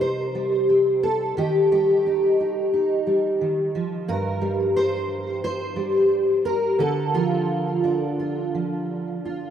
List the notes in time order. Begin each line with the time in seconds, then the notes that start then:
Already playing: C3 G3 D#4
0.01 C5
0.35 G3
0.69 C4
1.03 A4
1.37 D#3 G4
1.72 G3 G4
2.06 D#4
2.40 D#4
2.74 D#4
3.07 G3
3.41 D#3
3.75 F3
4.08 G2 A#4
4.41 G3
4.76 C5
5.44 C5
5.76 G3
6.45 A#4
6.79 D3 A4
7.14 F3 F4
7.84 D4
8.19 F4
8.54 F3
9.25 F4